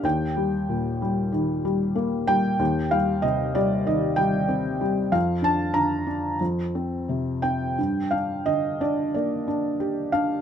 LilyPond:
<<
  \new Staff \with { instrumentName = "Felt piano" } { \time 4/4 \key g \minor \tempo 4 = 93 g''2 r4. g''8~ | g''8 f''8 ees''8 d''8 ees''8 g''4. | f''8 a''8 bes''4 r4. g''8~ | g''8 f''8 ees''8 d''8 d''4. f''8 | }
  \new Staff \with { instrumentName = "Felt piano" } { \clef bass \time 4/4 \key g \minor ees,8 g8 bes,8 g8 ees8 g8 bes8 g8 | ees,8 g8 c8 g8 ees8 g8 c'8 g8 | f,8 d'8 d8 d'8 f,8 c'8 c8 c'8 | g,8 d'8 d8 d'8 bes8 d'8 g'8 d'8 | }
>>